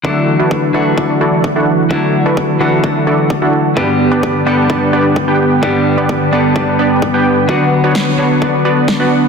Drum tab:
SD |--------|--------|--------|--------|
BD |o-o-o-o-|o-o-o-o-|o-o-o-o-|o-o-o-o-|

SD |--o---o-|
BD |o-o-o-o-|